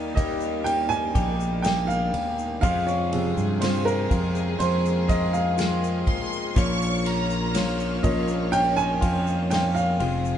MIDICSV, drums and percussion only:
0, 0, Header, 1, 2, 480
1, 0, Start_track
1, 0, Tempo, 983607
1, 1282, Time_signature, 4, 2, 24, 8
1, 5065, End_track
2, 0, Start_track
2, 0, Title_t, "Drums"
2, 83, Note_on_c, 9, 36, 76
2, 84, Note_on_c, 9, 51, 61
2, 86, Note_on_c, 9, 82, 43
2, 132, Note_off_c, 9, 36, 0
2, 133, Note_off_c, 9, 51, 0
2, 135, Note_off_c, 9, 82, 0
2, 198, Note_on_c, 9, 82, 44
2, 247, Note_off_c, 9, 82, 0
2, 323, Note_on_c, 9, 82, 57
2, 324, Note_on_c, 9, 51, 62
2, 372, Note_off_c, 9, 51, 0
2, 372, Note_off_c, 9, 82, 0
2, 445, Note_on_c, 9, 82, 46
2, 494, Note_off_c, 9, 82, 0
2, 562, Note_on_c, 9, 51, 69
2, 563, Note_on_c, 9, 36, 101
2, 564, Note_on_c, 9, 82, 41
2, 611, Note_off_c, 9, 36, 0
2, 611, Note_off_c, 9, 51, 0
2, 613, Note_off_c, 9, 82, 0
2, 685, Note_on_c, 9, 82, 46
2, 733, Note_off_c, 9, 82, 0
2, 801, Note_on_c, 9, 82, 73
2, 803, Note_on_c, 9, 51, 71
2, 810, Note_on_c, 9, 38, 107
2, 850, Note_off_c, 9, 82, 0
2, 852, Note_off_c, 9, 51, 0
2, 859, Note_off_c, 9, 38, 0
2, 928, Note_on_c, 9, 82, 48
2, 977, Note_off_c, 9, 82, 0
2, 1043, Note_on_c, 9, 51, 52
2, 1092, Note_off_c, 9, 51, 0
2, 1163, Note_on_c, 9, 82, 51
2, 1212, Note_off_c, 9, 82, 0
2, 1283, Note_on_c, 9, 36, 98
2, 1284, Note_on_c, 9, 51, 73
2, 1288, Note_on_c, 9, 82, 72
2, 1332, Note_off_c, 9, 36, 0
2, 1333, Note_off_c, 9, 51, 0
2, 1336, Note_off_c, 9, 82, 0
2, 1405, Note_on_c, 9, 82, 51
2, 1454, Note_off_c, 9, 82, 0
2, 1525, Note_on_c, 9, 51, 59
2, 1574, Note_off_c, 9, 51, 0
2, 1648, Note_on_c, 9, 82, 48
2, 1696, Note_off_c, 9, 82, 0
2, 1764, Note_on_c, 9, 51, 85
2, 1766, Note_on_c, 9, 82, 58
2, 1772, Note_on_c, 9, 38, 102
2, 1813, Note_off_c, 9, 51, 0
2, 1815, Note_off_c, 9, 82, 0
2, 1820, Note_off_c, 9, 38, 0
2, 1891, Note_on_c, 9, 82, 57
2, 1940, Note_off_c, 9, 82, 0
2, 2005, Note_on_c, 9, 36, 83
2, 2006, Note_on_c, 9, 51, 52
2, 2009, Note_on_c, 9, 82, 46
2, 2054, Note_off_c, 9, 36, 0
2, 2055, Note_off_c, 9, 51, 0
2, 2058, Note_off_c, 9, 82, 0
2, 2124, Note_on_c, 9, 82, 46
2, 2173, Note_off_c, 9, 82, 0
2, 2245, Note_on_c, 9, 51, 69
2, 2250, Note_on_c, 9, 82, 56
2, 2294, Note_off_c, 9, 51, 0
2, 2299, Note_off_c, 9, 82, 0
2, 2369, Note_on_c, 9, 82, 50
2, 2418, Note_off_c, 9, 82, 0
2, 2485, Note_on_c, 9, 36, 89
2, 2485, Note_on_c, 9, 51, 66
2, 2489, Note_on_c, 9, 82, 46
2, 2534, Note_off_c, 9, 36, 0
2, 2534, Note_off_c, 9, 51, 0
2, 2537, Note_off_c, 9, 82, 0
2, 2606, Note_on_c, 9, 82, 49
2, 2655, Note_off_c, 9, 82, 0
2, 2724, Note_on_c, 9, 82, 73
2, 2726, Note_on_c, 9, 51, 79
2, 2733, Note_on_c, 9, 38, 96
2, 2773, Note_off_c, 9, 82, 0
2, 2775, Note_off_c, 9, 51, 0
2, 2782, Note_off_c, 9, 38, 0
2, 2849, Note_on_c, 9, 82, 52
2, 2898, Note_off_c, 9, 82, 0
2, 2963, Note_on_c, 9, 36, 99
2, 2963, Note_on_c, 9, 51, 51
2, 3012, Note_off_c, 9, 36, 0
2, 3012, Note_off_c, 9, 51, 0
2, 3085, Note_on_c, 9, 82, 50
2, 3134, Note_off_c, 9, 82, 0
2, 3202, Note_on_c, 9, 51, 63
2, 3203, Note_on_c, 9, 36, 95
2, 3206, Note_on_c, 9, 82, 81
2, 3251, Note_off_c, 9, 51, 0
2, 3252, Note_off_c, 9, 36, 0
2, 3255, Note_off_c, 9, 82, 0
2, 3326, Note_on_c, 9, 82, 50
2, 3374, Note_off_c, 9, 82, 0
2, 3446, Note_on_c, 9, 51, 65
2, 3495, Note_off_c, 9, 51, 0
2, 3565, Note_on_c, 9, 82, 49
2, 3613, Note_off_c, 9, 82, 0
2, 3682, Note_on_c, 9, 82, 66
2, 3683, Note_on_c, 9, 51, 86
2, 3690, Note_on_c, 9, 38, 119
2, 3730, Note_off_c, 9, 82, 0
2, 3732, Note_off_c, 9, 51, 0
2, 3739, Note_off_c, 9, 38, 0
2, 3803, Note_on_c, 9, 82, 49
2, 3852, Note_off_c, 9, 82, 0
2, 3923, Note_on_c, 9, 51, 59
2, 3923, Note_on_c, 9, 82, 48
2, 3924, Note_on_c, 9, 36, 95
2, 3972, Note_off_c, 9, 36, 0
2, 3972, Note_off_c, 9, 51, 0
2, 3972, Note_off_c, 9, 82, 0
2, 4040, Note_on_c, 9, 82, 52
2, 4089, Note_off_c, 9, 82, 0
2, 4162, Note_on_c, 9, 51, 65
2, 4163, Note_on_c, 9, 82, 66
2, 4211, Note_off_c, 9, 51, 0
2, 4212, Note_off_c, 9, 82, 0
2, 4285, Note_on_c, 9, 82, 51
2, 4334, Note_off_c, 9, 82, 0
2, 4403, Note_on_c, 9, 36, 84
2, 4403, Note_on_c, 9, 51, 73
2, 4404, Note_on_c, 9, 82, 51
2, 4451, Note_off_c, 9, 36, 0
2, 4452, Note_off_c, 9, 51, 0
2, 4453, Note_off_c, 9, 82, 0
2, 4524, Note_on_c, 9, 82, 46
2, 4573, Note_off_c, 9, 82, 0
2, 4641, Note_on_c, 9, 82, 71
2, 4642, Note_on_c, 9, 51, 74
2, 4649, Note_on_c, 9, 38, 90
2, 4690, Note_off_c, 9, 51, 0
2, 4690, Note_off_c, 9, 82, 0
2, 4698, Note_off_c, 9, 38, 0
2, 4766, Note_on_c, 9, 82, 55
2, 4814, Note_off_c, 9, 82, 0
2, 4881, Note_on_c, 9, 51, 46
2, 4930, Note_off_c, 9, 51, 0
2, 5003, Note_on_c, 9, 82, 43
2, 5052, Note_off_c, 9, 82, 0
2, 5065, End_track
0, 0, End_of_file